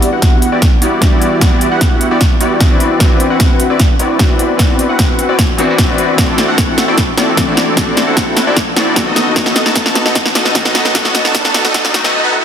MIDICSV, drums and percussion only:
0, 0, Header, 1, 2, 480
1, 0, Start_track
1, 0, Key_signature, 1, "minor"
1, 0, Tempo, 397351
1, 1707, Time_signature, 4, 2, 24, 8
1, 15036, End_track
2, 0, Start_track
2, 0, Title_t, "Drums"
2, 29, Note_on_c, 9, 42, 68
2, 150, Note_off_c, 9, 42, 0
2, 268, Note_on_c, 9, 36, 87
2, 268, Note_on_c, 9, 38, 46
2, 268, Note_on_c, 9, 42, 80
2, 389, Note_off_c, 9, 36, 0
2, 389, Note_off_c, 9, 38, 0
2, 389, Note_off_c, 9, 42, 0
2, 510, Note_on_c, 9, 42, 65
2, 630, Note_off_c, 9, 42, 0
2, 748, Note_on_c, 9, 36, 96
2, 749, Note_on_c, 9, 38, 47
2, 749, Note_on_c, 9, 42, 79
2, 869, Note_off_c, 9, 36, 0
2, 870, Note_off_c, 9, 38, 0
2, 870, Note_off_c, 9, 42, 0
2, 989, Note_on_c, 9, 42, 69
2, 1109, Note_off_c, 9, 42, 0
2, 1228, Note_on_c, 9, 36, 95
2, 1228, Note_on_c, 9, 38, 52
2, 1228, Note_on_c, 9, 42, 78
2, 1349, Note_off_c, 9, 36, 0
2, 1349, Note_off_c, 9, 38, 0
2, 1349, Note_off_c, 9, 42, 0
2, 1468, Note_on_c, 9, 42, 57
2, 1589, Note_off_c, 9, 42, 0
2, 1708, Note_on_c, 9, 36, 99
2, 1708, Note_on_c, 9, 38, 54
2, 1708, Note_on_c, 9, 42, 81
2, 1829, Note_off_c, 9, 36, 0
2, 1829, Note_off_c, 9, 38, 0
2, 1829, Note_off_c, 9, 42, 0
2, 1947, Note_on_c, 9, 42, 62
2, 2068, Note_off_c, 9, 42, 0
2, 2186, Note_on_c, 9, 38, 51
2, 2186, Note_on_c, 9, 42, 77
2, 2188, Note_on_c, 9, 36, 88
2, 2307, Note_off_c, 9, 38, 0
2, 2307, Note_off_c, 9, 42, 0
2, 2308, Note_off_c, 9, 36, 0
2, 2426, Note_on_c, 9, 42, 66
2, 2547, Note_off_c, 9, 42, 0
2, 2666, Note_on_c, 9, 38, 52
2, 2666, Note_on_c, 9, 42, 75
2, 2667, Note_on_c, 9, 36, 90
2, 2787, Note_off_c, 9, 38, 0
2, 2787, Note_off_c, 9, 42, 0
2, 2788, Note_off_c, 9, 36, 0
2, 2906, Note_on_c, 9, 42, 68
2, 3027, Note_off_c, 9, 42, 0
2, 3146, Note_on_c, 9, 38, 56
2, 3146, Note_on_c, 9, 42, 76
2, 3147, Note_on_c, 9, 36, 97
2, 3267, Note_off_c, 9, 36, 0
2, 3267, Note_off_c, 9, 38, 0
2, 3267, Note_off_c, 9, 42, 0
2, 3385, Note_on_c, 9, 42, 56
2, 3506, Note_off_c, 9, 42, 0
2, 3626, Note_on_c, 9, 36, 103
2, 3627, Note_on_c, 9, 38, 58
2, 3627, Note_on_c, 9, 42, 74
2, 3747, Note_off_c, 9, 36, 0
2, 3747, Note_off_c, 9, 38, 0
2, 3747, Note_off_c, 9, 42, 0
2, 3865, Note_on_c, 9, 42, 63
2, 3986, Note_off_c, 9, 42, 0
2, 4106, Note_on_c, 9, 36, 90
2, 4106, Note_on_c, 9, 38, 58
2, 4106, Note_on_c, 9, 42, 75
2, 4226, Note_off_c, 9, 38, 0
2, 4226, Note_off_c, 9, 42, 0
2, 4227, Note_off_c, 9, 36, 0
2, 4344, Note_on_c, 9, 42, 65
2, 4465, Note_off_c, 9, 42, 0
2, 4584, Note_on_c, 9, 38, 59
2, 4584, Note_on_c, 9, 42, 73
2, 4586, Note_on_c, 9, 36, 97
2, 4705, Note_off_c, 9, 38, 0
2, 4705, Note_off_c, 9, 42, 0
2, 4706, Note_off_c, 9, 36, 0
2, 4825, Note_on_c, 9, 42, 63
2, 4946, Note_off_c, 9, 42, 0
2, 5066, Note_on_c, 9, 36, 104
2, 5067, Note_on_c, 9, 38, 62
2, 5067, Note_on_c, 9, 42, 79
2, 5187, Note_off_c, 9, 36, 0
2, 5188, Note_off_c, 9, 38, 0
2, 5188, Note_off_c, 9, 42, 0
2, 5307, Note_on_c, 9, 42, 58
2, 5428, Note_off_c, 9, 42, 0
2, 5546, Note_on_c, 9, 36, 106
2, 5547, Note_on_c, 9, 38, 70
2, 5547, Note_on_c, 9, 42, 77
2, 5667, Note_off_c, 9, 36, 0
2, 5667, Note_off_c, 9, 38, 0
2, 5667, Note_off_c, 9, 42, 0
2, 5787, Note_on_c, 9, 42, 60
2, 5908, Note_off_c, 9, 42, 0
2, 6026, Note_on_c, 9, 36, 89
2, 6027, Note_on_c, 9, 38, 61
2, 6027, Note_on_c, 9, 42, 72
2, 6147, Note_off_c, 9, 36, 0
2, 6148, Note_off_c, 9, 38, 0
2, 6148, Note_off_c, 9, 42, 0
2, 6267, Note_on_c, 9, 42, 61
2, 6388, Note_off_c, 9, 42, 0
2, 6507, Note_on_c, 9, 36, 94
2, 6508, Note_on_c, 9, 38, 69
2, 6508, Note_on_c, 9, 42, 75
2, 6628, Note_off_c, 9, 36, 0
2, 6628, Note_off_c, 9, 38, 0
2, 6628, Note_off_c, 9, 42, 0
2, 6747, Note_on_c, 9, 42, 62
2, 6867, Note_off_c, 9, 42, 0
2, 6987, Note_on_c, 9, 36, 99
2, 6987, Note_on_c, 9, 38, 71
2, 6987, Note_on_c, 9, 42, 73
2, 7108, Note_off_c, 9, 36, 0
2, 7108, Note_off_c, 9, 38, 0
2, 7108, Note_off_c, 9, 42, 0
2, 7227, Note_on_c, 9, 42, 54
2, 7348, Note_off_c, 9, 42, 0
2, 7467, Note_on_c, 9, 36, 102
2, 7468, Note_on_c, 9, 38, 72
2, 7468, Note_on_c, 9, 42, 77
2, 7588, Note_off_c, 9, 36, 0
2, 7589, Note_off_c, 9, 38, 0
2, 7589, Note_off_c, 9, 42, 0
2, 7708, Note_on_c, 9, 38, 74
2, 7708, Note_on_c, 9, 42, 61
2, 7829, Note_off_c, 9, 38, 0
2, 7829, Note_off_c, 9, 42, 0
2, 7948, Note_on_c, 9, 36, 93
2, 7948, Note_on_c, 9, 38, 75
2, 7948, Note_on_c, 9, 42, 74
2, 8068, Note_off_c, 9, 36, 0
2, 8069, Note_off_c, 9, 38, 0
2, 8069, Note_off_c, 9, 42, 0
2, 8188, Note_on_c, 9, 38, 81
2, 8188, Note_on_c, 9, 42, 64
2, 8309, Note_off_c, 9, 38, 0
2, 8309, Note_off_c, 9, 42, 0
2, 8427, Note_on_c, 9, 36, 95
2, 8427, Note_on_c, 9, 38, 76
2, 8427, Note_on_c, 9, 42, 74
2, 8548, Note_off_c, 9, 36, 0
2, 8548, Note_off_c, 9, 38, 0
2, 8548, Note_off_c, 9, 42, 0
2, 8667, Note_on_c, 9, 38, 78
2, 8667, Note_on_c, 9, 42, 63
2, 8788, Note_off_c, 9, 38, 0
2, 8788, Note_off_c, 9, 42, 0
2, 8907, Note_on_c, 9, 36, 96
2, 8908, Note_on_c, 9, 38, 76
2, 8908, Note_on_c, 9, 42, 73
2, 9028, Note_off_c, 9, 36, 0
2, 9029, Note_off_c, 9, 38, 0
2, 9029, Note_off_c, 9, 42, 0
2, 9146, Note_on_c, 9, 38, 79
2, 9146, Note_on_c, 9, 42, 57
2, 9267, Note_off_c, 9, 38, 0
2, 9267, Note_off_c, 9, 42, 0
2, 9386, Note_on_c, 9, 38, 84
2, 9386, Note_on_c, 9, 42, 76
2, 9387, Note_on_c, 9, 36, 105
2, 9507, Note_off_c, 9, 38, 0
2, 9507, Note_off_c, 9, 42, 0
2, 9508, Note_off_c, 9, 36, 0
2, 9628, Note_on_c, 9, 38, 80
2, 9628, Note_on_c, 9, 42, 65
2, 9748, Note_off_c, 9, 38, 0
2, 9748, Note_off_c, 9, 42, 0
2, 9867, Note_on_c, 9, 36, 99
2, 9867, Note_on_c, 9, 38, 78
2, 9867, Note_on_c, 9, 42, 75
2, 9987, Note_off_c, 9, 38, 0
2, 9987, Note_off_c, 9, 42, 0
2, 9988, Note_off_c, 9, 36, 0
2, 10106, Note_on_c, 9, 38, 86
2, 10106, Note_on_c, 9, 42, 67
2, 10226, Note_off_c, 9, 38, 0
2, 10226, Note_off_c, 9, 42, 0
2, 10346, Note_on_c, 9, 38, 82
2, 10346, Note_on_c, 9, 42, 78
2, 10347, Note_on_c, 9, 36, 103
2, 10467, Note_off_c, 9, 38, 0
2, 10467, Note_off_c, 9, 42, 0
2, 10468, Note_off_c, 9, 36, 0
2, 10588, Note_on_c, 9, 38, 94
2, 10588, Note_on_c, 9, 42, 65
2, 10708, Note_off_c, 9, 38, 0
2, 10708, Note_off_c, 9, 42, 0
2, 10827, Note_on_c, 9, 36, 100
2, 10827, Note_on_c, 9, 38, 88
2, 10827, Note_on_c, 9, 42, 79
2, 10947, Note_off_c, 9, 38, 0
2, 10947, Note_off_c, 9, 42, 0
2, 10948, Note_off_c, 9, 36, 0
2, 11067, Note_on_c, 9, 38, 84
2, 11067, Note_on_c, 9, 42, 61
2, 11188, Note_off_c, 9, 38, 0
2, 11188, Note_off_c, 9, 42, 0
2, 11307, Note_on_c, 9, 36, 103
2, 11307, Note_on_c, 9, 38, 94
2, 11307, Note_on_c, 9, 42, 85
2, 11427, Note_off_c, 9, 36, 0
2, 11428, Note_off_c, 9, 38, 0
2, 11428, Note_off_c, 9, 42, 0
2, 11428, Note_on_c, 9, 38, 78
2, 11545, Note_off_c, 9, 38, 0
2, 11545, Note_on_c, 9, 38, 91
2, 11545, Note_on_c, 9, 42, 66
2, 11665, Note_off_c, 9, 38, 0
2, 11665, Note_off_c, 9, 42, 0
2, 11668, Note_on_c, 9, 38, 81
2, 11784, Note_off_c, 9, 38, 0
2, 11784, Note_on_c, 9, 38, 88
2, 11784, Note_on_c, 9, 42, 81
2, 11787, Note_on_c, 9, 36, 96
2, 11905, Note_off_c, 9, 38, 0
2, 11905, Note_off_c, 9, 42, 0
2, 11907, Note_off_c, 9, 36, 0
2, 11908, Note_on_c, 9, 38, 83
2, 12025, Note_off_c, 9, 38, 0
2, 12025, Note_on_c, 9, 38, 96
2, 12025, Note_on_c, 9, 42, 71
2, 12145, Note_off_c, 9, 38, 0
2, 12145, Note_off_c, 9, 42, 0
2, 12148, Note_on_c, 9, 38, 84
2, 12265, Note_off_c, 9, 38, 0
2, 12265, Note_on_c, 9, 38, 93
2, 12265, Note_on_c, 9, 42, 83
2, 12266, Note_on_c, 9, 36, 95
2, 12386, Note_off_c, 9, 38, 0
2, 12386, Note_off_c, 9, 42, 0
2, 12387, Note_off_c, 9, 36, 0
2, 12388, Note_on_c, 9, 38, 83
2, 12506, Note_off_c, 9, 38, 0
2, 12506, Note_on_c, 9, 38, 102
2, 12506, Note_on_c, 9, 42, 71
2, 12627, Note_off_c, 9, 38, 0
2, 12627, Note_off_c, 9, 42, 0
2, 12629, Note_on_c, 9, 38, 87
2, 12745, Note_off_c, 9, 38, 0
2, 12745, Note_on_c, 9, 38, 99
2, 12745, Note_on_c, 9, 42, 82
2, 12746, Note_on_c, 9, 36, 104
2, 12866, Note_off_c, 9, 38, 0
2, 12866, Note_off_c, 9, 42, 0
2, 12867, Note_off_c, 9, 36, 0
2, 12869, Note_on_c, 9, 38, 89
2, 12985, Note_off_c, 9, 38, 0
2, 12985, Note_on_c, 9, 38, 98
2, 12985, Note_on_c, 9, 42, 57
2, 13106, Note_off_c, 9, 38, 0
2, 13106, Note_off_c, 9, 42, 0
2, 13109, Note_on_c, 9, 38, 89
2, 13226, Note_off_c, 9, 38, 0
2, 13226, Note_on_c, 9, 38, 103
2, 13226, Note_on_c, 9, 42, 86
2, 13227, Note_on_c, 9, 36, 107
2, 13347, Note_off_c, 9, 36, 0
2, 13347, Note_off_c, 9, 38, 0
2, 13347, Note_off_c, 9, 42, 0
2, 13349, Note_on_c, 9, 38, 87
2, 13466, Note_off_c, 9, 38, 0
2, 13466, Note_on_c, 9, 38, 100
2, 13466, Note_on_c, 9, 42, 71
2, 13586, Note_off_c, 9, 38, 0
2, 13586, Note_off_c, 9, 42, 0
2, 13589, Note_on_c, 9, 38, 92
2, 13706, Note_off_c, 9, 38, 0
2, 13706, Note_on_c, 9, 38, 107
2, 13706, Note_on_c, 9, 42, 85
2, 13707, Note_on_c, 9, 36, 94
2, 13827, Note_off_c, 9, 38, 0
2, 13827, Note_off_c, 9, 42, 0
2, 13828, Note_off_c, 9, 36, 0
2, 13829, Note_on_c, 9, 38, 92
2, 13945, Note_off_c, 9, 38, 0
2, 13945, Note_on_c, 9, 38, 106
2, 13945, Note_on_c, 9, 42, 69
2, 14066, Note_off_c, 9, 38, 0
2, 14066, Note_off_c, 9, 42, 0
2, 14069, Note_on_c, 9, 38, 96
2, 14186, Note_off_c, 9, 38, 0
2, 14186, Note_on_c, 9, 38, 99
2, 14186, Note_on_c, 9, 42, 80
2, 14187, Note_on_c, 9, 36, 97
2, 14307, Note_off_c, 9, 38, 0
2, 14307, Note_off_c, 9, 42, 0
2, 14308, Note_off_c, 9, 36, 0
2, 14310, Note_on_c, 9, 38, 96
2, 14427, Note_off_c, 9, 38, 0
2, 14427, Note_on_c, 9, 38, 112
2, 14427, Note_on_c, 9, 42, 70
2, 14547, Note_off_c, 9, 38, 0
2, 14547, Note_off_c, 9, 42, 0
2, 14549, Note_on_c, 9, 38, 94
2, 14670, Note_off_c, 9, 38, 0
2, 15036, End_track
0, 0, End_of_file